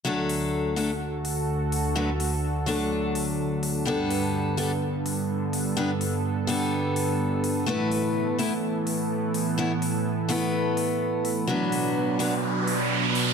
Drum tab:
HH |-o-o-o-o|-o-o-o-o|-o-o-o-o|-o-o-o-o|

HH |-o-o-o-o|-o-o-o-o|-o-o-o-o|